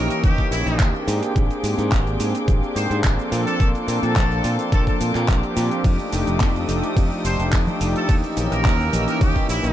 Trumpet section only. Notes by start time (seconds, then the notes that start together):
0.10 A#4
0.24 G4
0.52 E4
2.76 C5
3.46 A4
4.02 A4
4.72 A4
4.87 A4
7.25 C5
7.96 A4
8.52 A#4
9.08 A#4
9.21 G4
9.49 E4